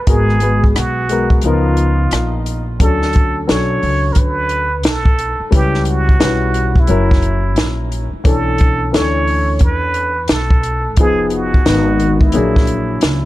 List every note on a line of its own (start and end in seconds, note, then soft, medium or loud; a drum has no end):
0.07 0.72 G#1 loud
0.07 0.37 G#3 medium
0.07 0.37 B3 medium
0.07 0.37 F#4 medium
0.07 0.77 G#4 loud
0.07 0.38 A#4 medium
0.07 kick loud
0.07 closed hi-hat medium
0.29 cross-stick soft
0.40 1.00 G#3 medium
0.40 1.01 B3 medium
0.40 1.01 F#4 medium
0.40 1.01 B4 medium
0.40 closed hi-hat medium
0.64 kick medium
0.76 1.41 B1 medium
0.76 1.44 F#4 medium
0.76 cross-stick loud
0.76 closed hi-hat medium
1.09 1.43 G#3 medium
1.09 1.43 B3 medium
1.09 1.44 F#4 medium
1.09 1.45 A#4 medium
1.09 closed hi-hat medium
1.30 kick medium
1.42 2.08 C#2 medium
1.42 2.60 F3 medium
1.42 2.60 B3 medium
1.42 2.42 F4 medium
1.42 closed hi-hat medium
1.46 2.61 D#4 medium
1.46 2.61 A#4 medium
1.77 closed hi-hat medium
2.11 2.77 A#1 medium
2.11 cross-stick loud
2.11 closed hi-hat loud
2.46 closed hi-hat medium
2.80 3.45 D2 medium
2.80 3.39 F#3 medium
2.80 3.40 C#4 medium
2.80 3.40 D4 medium
2.80 3.50 A4 loud
2.80 3.41 A4 medium
2.80 kick loud
2.80 closed hi-hat loud
3.02 snare soft
3.13 kick loud
3.13 closed hi-hat medium
3.47 3.81 B1 medium
3.47 4.64 F#3 medium
3.47 4.64 C#4 medium
3.47 4.65 D4 medium
3.47 4.65 A4 medium
3.47 4.14 C#5 loud
3.47 snare loud
3.47 closed hi-hat medium
3.83 4.15 C#2 medium
3.83 open hi-hat soft
4.13 4.85 D2 medium
4.13 4.19 A#4 medium
4.13 kick medium
4.13 closed hi-hat medium
4.18 4.88 B4 loud
4.49 closed hi-hat medium
4.83 5.37 B1 medium
4.83 5.53 A4 loud
4.83 snare loud
4.83 closed hi-hat medium
5.05 kick loud
5.19 closed hi-hat medium
5.40 muted upright bass stroke soft
5.51 6.17 C#2 medium
5.51 6.11 G3 medium
5.51 6.12 C#4 medium
5.51 6.12 E4 medium
5.51 6.13 B4 medium
5.51 kick loud
5.51 closed hi-hat medium
5.55 5.91 G4 loud
5.74 snare soft
5.85 closed hi-hat medium
5.90 6.81 F#4 medium
6.09 kick medium
6.19 6.86 B1 medium
6.19 6.88 G3 medium
6.19 6.87 C#4 medium
6.19 6.29 D4 medium
6.19 6.89 B4 medium
6.19 snare loud
6.19 closed hi-hat medium
6.28 6.89 E4 medium
6.54 closed hi-hat medium
6.76 kick medium
6.80 7.93 E4 medium
6.87 7.58 F#1 medium
6.87 8.05 F#3 medium
6.87 8.05 C#4 medium
6.87 8.06 E4 medium
6.87 8.06 A#4 medium
6.87 closed hi-hat medium
7.11 kick medium
7.11 snare soft
7.22 closed hi-hat medium
7.56 8.10 A#1 loud
7.56 snare loud
7.56 closed hi-hat medium
7.92 closed hi-hat medium
8.13 muted upright bass stroke soft
8.24 8.90 B1 medium
8.24 8.84 E3 medium
8.24 8.84 C#4 medium
8.24 8.85 D4 medium
8.24 8.86 A4 medium
8.24 8.96 A4 loud
8.24 kick loud
8.24 closed hi-hat loud
8.58 kick loud
8.58 closed hi-hat medium
8.91 9.59 D2 medium
8.91 10.09 E3 medium
8.91 10.09 C#4 medium
8.91 10.10 D4 medium
8.91 10.10 A4 medium
8.91 9.62 C#5 loud
8.91 snare loud
8.91 closed hi-hat medium
9.27 open hi-hat medium
9.59 10.26 E2 medium
9.59 kick medium
9.59 closed hi-hat medium
9.63 10.33 B4 loud
9.94 closed hi-hat medium
10.28 10.98 B1 medium
10.28 10.98 A4 loud
10.28 snare loud
10.28 closed hi-hat loud
10.50 kick medium
10.63 closed hi-hat medium
10.97 11.62 F1 medium
10.97 11.57 F3 medium
10.97 11.58 B3 medium
10.97 11.58 D#4 medium
10.97 11.35 G#4 loud
10.97 11.59 G#4 medium
10.97 kick loud
10.97 closed hi-hat loud
11.30 12.24 F#4 medium
11.30 closed hi-hat medium
11.54 kick medium
11.66 12.31 G#1 medium
11.66 12.34 D#3 medium
11.66 12.34 B3 medium
11.66 12.35 D#4 medium
11.66 12.35 B4 medium
11.66 snare loud
11.66 closed hi-hat medium
12.00 closed hi-hat medium
12.21 13.25 E4 medium
12.21 kick medium
12.32 12.99 A#1 loud
12.32 13.25 F#3 medium
12.32 13.25 A#3 medium
12.32 13.25 D4 medium
12.32 13.25 G#4 medium
12.32 closed hi-hat medium
12.56 kick medium
12.56 snare soft
12.67 closed hi-hat medium
13.01 13.25 C#2 medium
13.01 snare loud
13.01 closed hi-hat loud